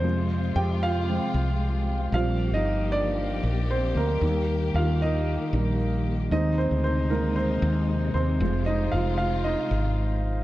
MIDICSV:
0, 0, Header, 1, 4, 480
1, 0, Start_track
1, 0, Tempo, 522648
1, 39, Time_signature, 4, 2, 24, 8
1, 9586, End_track
2, 0, Start_track
2, 0, Title_t, "Grand piano"
2, 0, Program_c, 0, 0
2, 0, Control_c, 0, 64, 127
2, 0, Note_on_c, 0, 72, 97
2, 34, Note_on_c, 0, 53, 48
2, 37, Note_on_c, 0, 56, 40
2, 46, Note_on_c, 0, 60, 49
2, 50, Control_c, 0, 64, 0
2, 235, Control_c, 0, 64, 127
2, 356, Note_off_c, 0, 53, 0
2, 357, Note_off_c, 0, 56, 0
2, 362, Note_off_c, 0, 60, 0
2, 513, Note_on_c, 0, 79, 86
2, 527, Note_on_c, 0, 67, 61
2, 536, Note_off_c, 0, 72, 0
2, 739, Note_off_c, 0, 79, 0
2, 747, Note_off_c, 0, 67, 0
2, 760, Note_on_c, 0, 77, 93
2, 771, Note_on_c, 0, 65, 71
2, 1003, Note_on_c, 0, 53, 42
2, 1008, Note_on_c, 0, 56, 39
2, 1008, Note_on_c, 0, 60, 47
2, 1218, Note_off_c, 0, 53, 0
2, 1220, Note_off_c, 0, 56, 0
2, 1220, Note_off_c, 0, 60, 0
2, 1929, Note_off_c, 0, 65, 0
2, 1952, Note_off_c, 0, 77, 0
2, 1964, Note_on_c, 0, 53, 43
2, 1966, Note_on_c, 0, 55, 41
2, 1966, Note_on_c, 0, 77, 88
2, 1974, Control_c, 0, 64, 0
2, 1974, Note_on_c, 0, 60, 51
2, 1977, Note_on_c, 0, 65, 68
2, 2136, Control_c, 0, 64, 127
2, 2304, Note_off_c, 0, 65, 0
2, 2331, Note_on_c, 0, 75, 87
2, 2333, Note_off_c, 0, 77, 0
2, 2340, Note_on_c, 0, 63, 63
2, 2646, Note_off_c, 0, 53, 0
2, 2647, Note_off_c, 0, 55, 0
2, 2651, Note_off_c, 0, 60, 0
2, 2665, Note_off_c, 0, 63, 0
2, 2682, Note_on_c, 0, 74, 96
2, 2687, Note_on_c, 0, 62, 68
2, 2696, Note_off_c, 0, 75, 0
2, 3367, Note_off_c, 0, 62, 0
2, 3403, Note_on_c, 0, 72, 75
2, 3416, Note_on_c, 0, 60, 56
2, 3422, Note_off_c, 0, 74, 0
2, 3632, Note_off_c, 0, 60, 0
2, 3646, Note_on_c, 0, 70, 74
2, 3649, Note_off_c, 0, 72, 0
2, 3656, Note_on_c, 0, 58, 58
2, 3881, Note_off_c, 0, 58, 0
2, 3881, Note_on_c, 0, 51, 42
2, 3889, Note_on_c, 0, 55, 41
2, 3891, Control_c, 0, 64, 0
2, 3894, Note_on_c, 0, 58, 49
2, 4027, Control_c, 0, 64, 127
2, 4367, Note_on_c, 0, 77, 77
2, 4380, Note_on_c, 0, 65, 59
2, 4385, Note_off_c, 0, 70, 0
2, 4564, Note_off_c, 0, 51, 0
2, 4569, Note_off_c, 0, 55, 0
2, 4572, Note_off_c, 0, 58, 0
2, 4594, Note_off_c, 0, 65, 0
2, 4610, Note_on_c, 0, 75, 81
2, 4611, Note_off_c, 0, 77, 0
2, 4619, Note_on_c, 0, 63, 63
2, 5083, Note_on_c, 0, 51, 41
2, 5088, Note_on_c, 0, 55, 38
2, 5092, Note_on_c, 0, 58, 41
2, 5298, Note_off_c, 0, 51, 0
2, 5301, Note_off_c, 0, 55, 0
2, 5303, Note_off_c, 0, 58, 0
2, 5773, Note_off_c, 0, 63, 0
2, 5792, Note_off_c, 0, 75, 0
2, 5805, Note_on_c, 0, 51, 46
2, 5805, Note_on_c, 0, 75, 83
2, 5811, Control_c, 0, 64, 0
2, 5811, Note_on_c, 0, 56, 43
2, 5814, Note_on_c, 0, 60, 54
2, 5814, Note_on_c, 0, 63, 62
2, 5963, Control_c, 0, 64, 127
2, 6026, Note_off_c, 0, 75, 0
2, 6031, Note_off_c, 0, 63, 0
2, 6042, Note_off_c, 0, 60, 0
2, 6043, Note_on_c, 0, 72, 76
2, 6056, Note_on_c, 0, 60, 55
2, 6122, Note_off_c, 0, 51, 0
2, 6125, Note_off_c, 0, 56, 0
2, 6268, Note_off_c, 0, 72, 0
2, 6272, Note_off_c, 0, 60, 0
2, 6281, Note_on_c, 0, 72, 78
2, 6295, Note_on_c, 0, 60, 57
2, 6504, Note_off_c, 0, 72, 0
2, 6512, Note_off_c, 0, 60, 0
2, 6522, Note_on_c, 0, 70, 69
2, 6524, Note_on_c, 0, 51, 43
2, 6531, Note_on_c, 0, 56, 41
2, 6535, Note_on_c, 0, 60, 48
2, 6537, Note_on_c, 0, 58, 53
2, 6739, Note_off_c, 0, 51, 0
2, 6743, Note_off_c, 0, 56, 0
2, 6744, Note_off_c, 0, 60, 0
2, 6753, Note_off_c, 0, 58, 0
2, 6758, Note_on_c, 0, 72, 80
2, 6769, Note_off_c, 0, 70, 0
2, 6769, Note_on_c, 0, 60, 61
2, 7448, Note_off_c, 0, 60, 0
2, 7462, Note_off_c, 0, 72, 0
2, 7476, Note_on_c, 0, 72, 77
2, 7491, Note_on_c, 0, 60, 62
2, 7720, Note_off_c, 0, 60, 0
2, 7722, Note_on_c, 0, 53, 47
2, 7730, Note_on_c, 0, 56, 43
2, 7732, Control_c, 0, 64, 0
2, 7734, Note_on_c, 0, 60, 55
2, 7919, Control_c, 0, 64, 127
2, 7925, Note_off_c, 0, 72, 0
2, 7955, Note_on_c, 0, 75, 79
2, 7968, Note_on_c, 0, 63, 59
2, 8188, Note_off_c, 0, 63, 0
2, 8188, Note_on_c, 0, 77, 76
2, 8204, Note_on_c, 0, 65, 58
2, 8206, Note_off_c, 0, 75, 0
2, 8406, Note_off_c, 0, 53, 0
2, 8410, Note_off_c, 0, 56, 0
2, 8412, Note_off_c, 0, 60, 0
2, 8414, Note_off_c, 0, 77, 0
2, 8424, Note_off_c, 0, 65, 0
2, 8428, Note_on_c, 0, 77, 77
2, 8438, Note_on_c, 0, 65, 64
2, 8483, Note_off_c, 0, 77, 0
2, 8492, Note_off_c, 0, 65, 0
2, 8672, Note_on_c, 0, 75, 80
2, 8684, Note_on_c, 0, 63, 60
2, 9586, Note_off_c, 0, 63, 0
2, 9586, Note_off_c, 0, 75, 0
2, 9586, End_track
3, 0, Start_track
3, 0, Title_t, "String section"
3, 0, Program_c, 1, 48
3, 0, Note_on_c, 1, 48, 65
3, 0, Note_on_c, 1, 56, 62
3, 41, Note_on_c, 1, 65, 75
3, 1923, Note_off_c, 1, 56, 0
3, 1926, Note_off_c, 1, 48, 0
3, 1941, Note_off_c, 1, 65, 0
3, 1956, Note_on_c, 1, 53, 66
3, 1958, Note_on_c, 1, 67, 71
3, 1960, Note_on_c, 1, 58, 63
3, 3859, Note_off_c, 1, 53, 0
3, 3892, Note_on_c, 1, 51, 64
3, 5763, Note_off_c, 1, 67, 0
3, 5764, Note_off_c, 1, 58, 0
3, 5787, Note_off_c, 1, 51, 0
3, 5800, Note_on_c, 1, 48, 69
3, 5801, Note_on_c, 1, 63, 77
3, 5802, Note_on_c, 1, 56, 60
3, 7702, Note_off_c, 1, 63, 0
3, 7710, Note_on_c, 1, 65, 75
3, 9586, Note_off_c, 1, 48, 0
3, 9586, Note_off_c, 1, 56, 0
3, 9586, Note_off_c, 1, 65, 0
3, 9586, End_track
4, 0, Start_track
4, 0, Title_t, "Fretless electric bass"
4, 0, Program_c, 2, 35
4, 32, Note_on_c, 2, 41, 94
4, 482, Note_off_c, 2, 41, 0
4, 511, Note_on_c, 2, 41, 85
4, 1085, Note_off_c, 2, 41, 0
4, 1232, Note_on_c, 2, 36, 81
4, 1920, Note_off_c, 2, 36, 0
4, 1950, Note_on_c, 2, 34, 82
4, 2289, Note_off_c, 2, 34, 0
4, 2311, Note_on_c, 2, 31, 62
4, 3119, Note_off_c, 2, 31, 0
4, 3154, Note_on_c, 2, 34, 77
4, 3603, Note_off_c, 2, 34, 0
4, 3631, Note_on_c, 2, 38, 64
4, 3858, Note_off_c, 2, 38, 0
4, 3870, Note_on_c, 2, 39, 83
4, 4321, Note_off_c, 2, 39, 0
4, 4356, Note_on_c, 2, 39, 86
4, 4928, Note_off_c, 2, 39, 0
4, 5077, Note_on_c, 2, 34, 81
4, 5763, Note_off_c, 2, 34, 0
4, 5798, Note_on_c, 2, 39, 81
4, 6134, Note_off_c, 2, 39, 0
4, 6162, Note_on_c, 2, 38, 68
4, 6965, Note_off_c, 2, 38, 0
4, 7000, Note_on_c, 2, 39, 93
4, 7447, Note_off_c, 2, 39, 0
4, 7479, Note_on_c, 2, 39, 65
4, 7703, Note_off_c, 2, 39, 0
4, 7718, Note_on_c, 2, 29, 93
4, 8166, Note_off_c, 2, 29, 0
4, 8199, Note_on_c, 2, 29, 81
4, 8770, Note_off_c, 2, 29, 0
4, 8916, Note_on_c, 2, 32, 82
4, 9586, Note_off_c, 2, 32, 0
4, 9586, End_track
0, 0, End_of_file